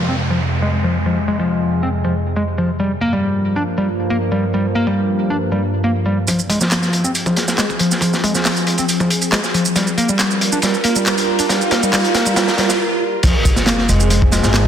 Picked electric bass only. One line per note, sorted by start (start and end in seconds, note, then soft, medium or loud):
0.08 0.14 C4 medium
0.30 0.39 F3 medium
0.62 0.68 G#3 medium
0.84 0.95 F3 medium
1.06 1.17 F3 medium
1.28 1.38 G#3 medium
1.39 1.82 F3 medium
1.83 1.88 C4 medium
2.05 2.13 F3 medium
2.36 2.42 G#3 medium
2.58 2.69 F3 medium
2.80 2.91 G3 medium
3.01 3.12 A#3 medium
3.13 3.55 G3 loud
3.56 3.61 D4 medium
3.78 3.87 G3 medium
4.10 4.16 A#3 medium
4.32 4.43 G3 medium
4.54 4.65 G3 medium
4.75 4.86 A#3 medium
4.87 5.29 G3 loud
5.30 5.35 D4 medium
5.52 5.61 G3 medium
5.84 5.90 A#3 medium
6.06 6.17 G3 medium
6.28 6.39 F3 medium
6.49 6.60 G#3 medium
6.61 7.03 F3 loud
7.04 7.09 C4 medium
7.26 7.35 F3 medium
7.58 7.64 G#3 medium
7.80 7.91 F3 medium
8.02 8.13 F3 medium
8.24 8.34 G#3 medium
8.35 8.77 F3 loud
8.79 8.84 C4 medium
9.00 9.09 F3 medium
9.33 9.38 G#3 medium
9.54 9.65 F3 medium
9.76 9.87 G3 medium
9.98 10.08 A#3 medium
10.09 10.51 G3 medium
10.52 10.57 D4 medium
10.63 10.74 G3 medium
10.84 10.95 A#3 loud
10.96 11.38 G3 medium
11.39 11.44 D4 medium
11.50 11.60 G3 medium
11.71 11.82 A#3 loud
11.83 11.92 G3 loud
11.93 12.04 G3 medium
12.15 12.25 A#3 loud
12.26 12.35 G3 loud
12.37 12.47 G3 medium
12.58 12.69 G3 medium
13.24 13.33 F3 medium
13.67 13.88 A#3 medium
13.89 14.10 G#3 medium
14.11 14.20 G#3 medium
14.32 14.43 G#3 medium
14.44 14.68 G#3 medium